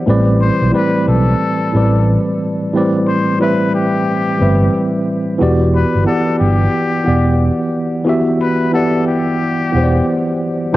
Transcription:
0.06 0.49 A1 loud
0.06 0.66 A2 medium
0.06 0.66 E3 medium
0.06 0.67 G3 medium
0.06 0.67 C4 medium
0.06 0.68 B4 medium
0.10 0.68 D5 loud
0.41 0.71 C5 medium
0.62 0.71 B1 medium
0.71 1.62 A2 medium
0.71 1.62 E3 medium
0.71 1.63 G3 medium
0.71 1.63 C4 medium
0.71 1.04 B4 medium
0.71 1.63 B4 medium
0.76 1.64 D5 medium
1.08 1.33 B1 medium
1.08 2.24 A4 medium
1.72 2.16 A1 loud
1.72 2.62 A2 medium
1.72 2.63 E3 medium
1.72 2.63 G3 medium
1.72 2.64 C4 medium
1.72 2.64 B4 medium
1.77 2.65 D5 medium
2.73 3.33 A2 medium
2.73 3.33 E3 medium
2.73 3.34 G3 medium
2.73 3.34 C4 medium
2.73 3.35 B4 medium
2.77 3.35 D5 loud
3.07 3.37 C5 medium
3.38 4.29 A2 medium
3.38 4.29 E3 medium
3.38 4.30 G3 medium
3.38 4.30 C4 medium
3.38 3.71 B4 medium
3.38 4.31 B4 medium
3.43 4.31 E5 medium
3.75 4.91 G4 medium
4.38 4.67 G1 medium
4.38 5.28 A2 medium
4.38 5.29 E3 medium
4.38 5.29 G3 medium
4.38 5.30 C4 medium
4.38 5.30 B4 medium
4.42 5.31 E5 medium
5.38 5.83 E1 loud
5.38 5.99 E3 medium
5.38 5.99 B3 medium
5.38 6.00 F#4 medium
5.38 6.01 G4 medium
5.43 6.01 D5 loud
5.75 6.05 B4 medium
5.95 6.05 G1 medium
6.05 6.95 E3 medium
6.05 6.96 B3 medium
6.05 6.97 G4 medium
6.05 6.37 A4 medium
6.05 6.96 F#5 medium
6.09 6.97 D5 medium
6.39 6.67 G1 loud
6.39 7.57 G4 medium
7.04 7.49 E1 medium
7.04 7.95 E3 medium
7.04 7.95 B3 medium
7.04 7.96 G4 medium
7.04 7.96 F#5 medium
7.08 7.97 D5 medium
8.05 8.65 E3 medium
8.05 8.66 B3 medium
8.05 8.67 F#4 medium
8.05 8.67 G4 medium
8.09 8.68 E5 loud
8.41 8.71 B4 medium
8.72 9.62 E3 medium
8.72 9.63 B3 medium
8.72 9.64 G4 medium
8.72 9.04 A4 medium
8.72 9.63 F#5 medium
8.76 9.64 D5 medium
9.07 10.24 G4 medium
9.72 10.00 E1 medium
9.72 10.62 E3 medium
9.72 10.63 B3 medium
9.72 10.64 G4 medium
9.72 10.63 F#5 medium
9.77 9.83 C5 medium
9.83 10.68 D5 medium
10.72 10.77 A2 loud
10.72 10.77 E3 medium

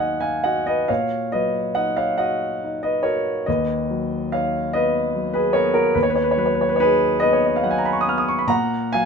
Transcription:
0.00 0.82 D#2 medium
0.00 0.91 F#3 soft
0.00 0.91 D#4 soft
0.00 0.26 F#4 soft
0.00 0.44 D#5 medium
0.00 0.22 F5 medium
0.00 0.44 F#5 medium
0.00 0.20 G#5 medium
0.00 0.91 A#5 medium
0.20 0.43 F5 medium
0.20 0.44 G#5 medium
0.44 1.16 F#4 soft
0.44 0.65 D#5 medium
0.44 0.66 F#5 medium
0.66 0.88 B4 medium
0.66 0.89 D#5 medium
0.88 1.58 A#2 soft
0.88 1.30 C#5 medium
0.88 1.32 F5 medium
1.32 2.01 F#3 soft
1.32 1.72 B4 medium
1.32 1.73 D#5 medium
1.75 2.43 D#4 soft
1.75 1.95 D#5 medium
1.75 1.96 F#5 medium
1.97 2.17 C#5 medium
1.97 2.17 F5 medium
2.18 2.87 F#4 medium
2.18 2.78 D#5 medium
2.18 2.82 F#5 medium
2.64 3.31 D#4 soft
2.83 3.03 B4 medium
2.83 3.04 D#5 medium
3.03 3.48 F#4 medium
3.03 3.44 A#4 medium
3.03 3.46 C#5 medium
3.46 5.92 D#2 medium
3.46 4.29 B4 medium
3.46 4.32 D#5 medium
3.91 4.58 F#3 medium
4.32 5.00 D#4 soft
4.32 4.72 C#5 medium
4.32 4.74 F5 medium
4.73 5.40 B3 medium
4.73 5.31 B4 medium
4.73 5.34 D#5 medium
5.15 5.79 F#3 soft
5.34 5.53 G#4 medium
5.34 5.54 B4 medium
5.53 6.20 B3 medium
5.53 5.72 A#4 medium
5.53 5.74 C#5 medium
5.74 5.94 F#4 medium
5.74 5.95 A#4 medium
5.95 8.46 D#2 medium
5.95 6.02 B4 medium
6.03 6.10 C#5 medium
6.10 6.17 B4 medium
6.16 6.23 C#5 medium
6.24 6.31 B4 medium
6.31 6.38 C#5 medium
6.37 7.05 F#3 medium
6.37 6.46 B4 medium
6.46 6.53 C#5 medium
6.54 6.61 B4 medium
6.61 6.68 C#5 medium
6.69 6.76 B4 medium
6.76 6.83 C#5 medium
6.80 7.47 D#4 medium
6.80 7.19 G#4 medium
6.80 7.20 B4 loud
7.20 7.89 B3 medium
7.20 7.35 B4 medium
7.20 7.35 D#5 loud
7.33 7.46 C#5 medium
7.46 7.57 D#5 medium
7.56 7.66 F5 medium
7.64 8.32 F#3 medium
7.64 7.73 F#5 medium
7.71 7.80 G#5 medium
7.78 7.87 A#5 medium
7.85 7.94 B5 medium
7.93 8.01 C#6 medium
8.01 8.10 D#6 medium
8.07 8.50 B3 medium
8.07 8.19 F6 medium
8.18 8.28 D#6 medium
8.28 8.39 C#6 medium
8.39 8.49 B5 medium
8.47 9.05 A#2 medium
8.47 8.91 F#5 medium
8.47 8.93 A#5 loud
8.93 9.05 F#3 medium
8.93 9.05 F5 medium
8.93 9.05 G#5 loud

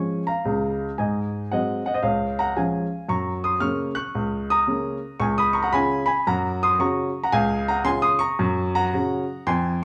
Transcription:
0.00 0.22 F3 soft
0.00 0.22 G#3 soft
0.00 0.22 C#4 soft
0.00 0.26 G#5 medium
0.00 0.29 C#6 medium
0.27 0.95 F5 medium
0.27 0.98 A#5 medium
0.45 0.88 C#2 medium
0.45 0.88 C#3 medium
0.98 1.44 G#2 medium
0.98 1.48 D#5 medium
0.98 1.51 G#5 medium
1.52 1.81 F#3 soft
1.52 1.81 G#3 soft
1.52 1.81 C4 soft
1.52 1.84 D#5 medium
1.52 1.84 F#5 medium
1.86 1.93 D#5 medium
1.86 1.95 F#5 medium
1.94 2.04 C5 medium
1.94 2.04 D#5 medium
2.03 2.49 C#2 medium
2.03 2.37 C#5 soft
2.03 2.39 F5 medium
2.39 2.56 F#5 medium
2.39 2.57 A#5 medium
2.56 2.85 F3 soft
2.56 2.86 G#3 soft
2.56 2.86 C#4 soft
2.56 3.07 F5 soft
2.56 3.10 G#5 medium
3.09 3.54 F#2 medium
3.09 3.43 A#5 medium
3.09 3.45 C#6 medium
3.44 3.62 C6 medium
3.44 3.62 D#6 medium
3.60 3.90 C#3 soft
3.60 3.90 A#3 soft
3.60 3.91 C#4 medium
3.60 3.94 C#6 medium
3.60 3.95 F6 medium
3.95 4.47 C#6 medium
3.95 4.50 F#6 medium
4.15 4.60 C#2 medium
4.50 5.18 A#5 medium
4.50 5.21 D#6 medium
4.67 4.97 C#3 soft
4.67 4.97 A#3 soft
4.67 4.97 C#4 soft
5.20 5.65 C#2 medium
5.20 5.37 G#5 medium
5.20 5.37 C#6 medium
5.38 5.54 B5 medium
5.38 5.55 D#6 medium
5.53 5.61 A#5 medium
5.53 5.64 C#6 medium
5.62 5.73 F#5 medium
5.62 5.73 A#5 medium
5.73 6.02 C#3 medium
5.73 6.03 C#4 soft
5.73 6.03 F4 soft
5.73 6.06 G#5 medium
5.73 6.04 B5 loud
6.06 6.26 G#5 medium
6.06 6.26 B5 medium
6.27 6.72 F#2 medium
6.27 6.61 F#5 medium
6.27 6.63 A#5 medium
6.63 6.80 C6 medium
6.63 6.80 D#6 medium
6.79 7.08 C#3 soft
6.79 7.09 C#4 medium
6.79 7.09 F#4 medium
6.79 7.21 A#5 medium
6.79 7.23 C#6 medium
7.24 7.33 F#5 medium
7.24 7.33 A#5 medium
7.32 7.78 C#2 medium
7.32 7.66 F5 medium
7.32 7.68 G#5 loud
7.68 7.86 F#5 medium
7.68 7.86 A#5 medium
7.85 8.14 C#3 medium
7.85 8.14 C#4 soft
7.85 8.15 F4 medium
7.85 8.02 G#5 medium
7.85 8.02 C6 loud
8.02 8.19 C6 medium
8.02 8.20 D#6 loud
8.19 8.71 A#5 medium
8.19 8.74 C#6 loud
8.39 8.84 F#2 medium
8.75 9.42 F#5 medium
8.75 9.46 A#5 loud
8.94 9.22 C#3 soft
8.94 9.22 C#4 medium
8.94 9.23 F#4 medium
9.47 9.84 F2 medium
9.47 9.80 G#5 medium
9.47 9.82 C6 loud

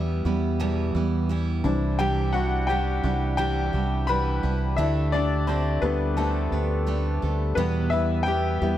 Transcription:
0.00 0.22 E2 loud
0.00 0.25 E3 medium
0.00 0.25 G3 medium
0.00 1.67 G3 medium
0.00 0.25 B3 medium
0.00 1.67 B3 soft
0.00 0.24 E4 medium
0.00 1.67 E4 medium
0.00 1.67 G4 medium
0.00 1.67 G5 medium
0.25 0.91 E2 loud
0.25 0.59 E3 soft
0.25 0.60 G3 medium
0.25 0.59 B3 medium
0.25 0.60 E4 medium
0.60 0.95 E2 medium
0.60 0.95 B2 medium
0.60 0.95 E3 medium
0.60 0.95 G3 medium
0.60 0.95 B3 medium
0.60 0.93 E4 medium
0.95 1.61 E2 medium
0.95 1.28 E3 soft
0.95 1.29 G3 soft
0.95 1.29 B3 soft
0.95 1.30 E4 medium
1.29 1.65 E3 medium
1.29 1.65 G3 medium
1.29 1.64 B3 medium
1.29 1.63 E4 medium
1.64 3.00 C2 medium
1.64 4.39 E3 medium
1.64 1.98 G3 soft
1.64 4.40 C4 soft
1.64 1.98 D4 medium
1.64 4.40 D4 medium
1.64 1.99 E4 medium
1.99 2.34 C3 medium
1.99 2.34 E3 medium
1.99 2.35 G3 medium
1.99 2.34 D4 medium
1.99 2.33 E4 medium
1.99 2.33 G4 medium
1.99 2.35 G5 medium
2.33 2.69 G3 soft
2.33 2.69 D4 medium
2.33 2.69 E4 medium
2.33 2.67 F#4 medium
2.33 2.70 F#5 medium
2.67 3.04 E3 medium
2.67 3.04 G3 medium
2.67 3.03 D4 medium
2.67 3.35 G4 medium
2.67 3.34 G5 medium
2.71 3.02 E4 medium
3.04 3.70 C2 loud
3.04 3.37 G3 soft
3.04 3.38 D4 medium
3.04 3.38 E4 medium
3.37 3.74 C3 medium
3.37 3.74 E3 medium
3.37 3.74 G3 medium
3.37 3.73 D4 medium
3.37 3.72 E4 medium
3.37 4.05 G4 medium
3.37 4.10 G5 loud
3.73 4.40 C2 medium
3.73 4.07 G3 soft
3.73 4.08 D4 medium
3.73 4.08 E4 medium
4.07 4.43 E3 medium
4.07 4.44 G3 medium
4.07 4.43 D4 medium
4.07 4.42 E4 medium
4.07 4.58 B4 medium
4.07 4.57 B5 loud
4.43 4.76 C2 medium
4.43 4.78 G3 soft
4.43 4.77 D4 medium
4.43 4.78 E4 medium
4.76 5.79 D2 loud
4.76 5.13 D3 medium
4.76 5.13 A3 medium
4.76 5.13 D4 medium
4.76 5.11 E4 medium
4.76 5.12 G4 medium
4.76 5.14 E5 medium
5.12 5.47 A3 soft
5.12 5.48 D4 medium
5.12 5.46 D4 medium
5.12 5.48 G4 medium
5.12 5.49 D5 medium
5.47 5.83 D3 medium
5.47 5.82 A3 medium
5.47 5.81 C4 medium
5.47 5.81 D4 medium
5.47 5.81 G4 medium
5.47 5.84 C5 medium
5.82 6.49 D2 medium
5.82 7.53 G3 medium
5.82 6.17 A3 medium
5.82 6.16 A3 soft
5.82 6.16 B3 medium
5.82 6.16 D4 soft
5.82 7.54 D4 medium
5.82 6.17 G4 medium
5.82 6.18 B4 medium
6.17 6.52 D3 medium
6.17 6.53 A3 medium
6.17 7.19 A3 medium
6.17 6.52 D4 medium
6.17 6.51 G4 medium
6.17 7.18 A4 medium
6.52 7.18 D2 medium
6.52 6.86 A3 soft
6.52 6.86 D4 medium
6.52 6.87 G4 medium
6.87 7.22 D3 medium
6.87 7.22 A3 medium
6.87 7.22 D4 medium
6.87 7.21 G4 medium
7.22 7.55 D2 medium
7.22 7.57 A3 soft
7.22 7.57 D4 soft
7.22 7.57 G4 medium
7.55 8.58 E2 loud
7.55 7.92 E2 medium
7.55 7.93 B2 medium
7.55 7.92 E3 medium
7.55 7.92 G3 medium
7.55 7.91 B3 medium
7.55 7.90 G4 medium
7.55 7.92 B4 medium
7.90 8.25 E3 soft
7.90 8.26 G3 soft
7.90 8.26 B3 soft
7.90 8.25 E4 medium
7.90 8.27 G4 medium
7.90 8.27 E5 medium
8.23 8.62 E3 medium
8.23 8.62 G3 medium
8.23 8.78 G5 loud
8.27 8.61 B3 medium
8.27 8.78 G4 medium
8.27 8.60 G4 medium
8.62 8.78 E2 medium
8.62 8.78 E3 soft
8.62 8.78 G3 medium
8.62 8.78 G3 soft
8.62 8.78 B3 soft
8.62 8.78 E4 medium
8.62 8.78 G4 medium

